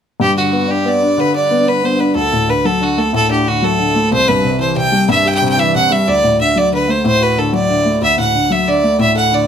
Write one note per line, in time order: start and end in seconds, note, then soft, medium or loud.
0.20 2.11 G2 medium
0.20 0.36 G4 medium
0.36 0.52 D3 soft
0.36 0.72 F#4 medium
0.52 0.68 B3 soft
0.68 0.84 D4 medium
0.68 0.89 G4 medium
0.85 1.01 B3 soft
0.85 1.22 D5 medium
1.01 1.17 D4 soft
1.17 2.12 D3 medium
1.17 1.35 B4 medium
1.35 1.50 D4 soft
1.35 1.71 D5 medium
1.51 1.66 B3 soft
1.66 1.82 D4 medium
1.66 1.87 B4 medium
1.83 1.99 B3 soft
1.83 2.02 C5 medium
2.00 2.15 D4 soft
2.00 2.15 B4 medium
2.15 4.07 D2 soft
2.15 2.51 A4 medium
2.32 2.48 A2 soft
2.48 2.64 D3 soft
2.48 2.68 B4 medium
2.65 2.80 F#3 medium
2.65 2.84 A4 medium
2.81 2.96 D3 soft
2.81 3.00 F#4 medium
2.97 3.13 A3 soft
2.97 3.14 A4 medium
3.13 4.08 A2 medium
3.13 3.30 A4 medium
3.29 3.45 D4 soft
3.29 3.50 G4 medium
3.46 3.62 D3 soft
3.46 3.66 F#4 medium
3.62 3.78 F#3 medium
3.62 4.12 A4 medium
3.79 3.94 D3 soft
3.95 4.10 A3 medium
4.12 6.02 C2 medium
4.12 4.30 C5 loud
4.28 4.43 G2 soft
4.28 4.60 B4 medium
4.43 4.59 C3 soft
4.59 4.75 E3 medium
4.59 4.75 C5 medium
4.76 4.92 C3 soft
4.76 5.07 G5 medium
4.92 5.08 G3 soft
5.09 6.03 G2 medium
5.09 5.29 E5 loud
5.25 5.41 G4 soft
5.25 5.34 G5 medium
5.35 5.46 G5 medium
5.42 5.57 C3 medium
5.49 5.61 G5 medium
5.57 5.73 E3 medium
5.57 5.75 E5 medium
5.75 5.90 C3 soft
5.75 5.94 F#5 medium
5.90 6.06 G3 soft
5.90 6.09 E5 medium
6.08 7.98 D2 medium
6.08 6.39 D5 loud
6.23 6.39 A2 soft
6.40 6.55 D3 soft
6.40 6.59 E5 medium
6.56 6.71 F#3 soft
6.56 6.73 D5 medium
6.72 6.87 D3 soft
6.72 6.92 B4 medium
6.88 7.03 A3 soft
6.88 7.05 C5 medium
7.04 7.98 A2 medium
7.04 7.24 C5 medium
7.21 7.36 F#4 soft
7.21 7.40 B4 medium
7.37 7.52 D3 soft
7.37 7.54 A4 medium
7.53 7.68 F#3 medium
7.53 7.99 D5 medium
7.69 7.84 D3 soft
7.85 8.01 A3 soft
8.02 9.47 D2 medium
8.02 8.18 E5 medium
8.18 8.33 A2 soft
8.18 8.53 F#5 medium
8.34 8.50 D3 soft
8.50 8.66 F#3 soft
8.50 8.70 E5 medium
8.67 8.82 D3 soft
8.67 8.99 D5 medium
8.83 8.99 A3 soft
8.99 9.47 A2 medium
8.99 9.15 E5 medium
9.15 9.30 A4 soft
9.15 9.36 F#5 medium
9.31 9.46 D3 soft
9.31 9.47 D5 medium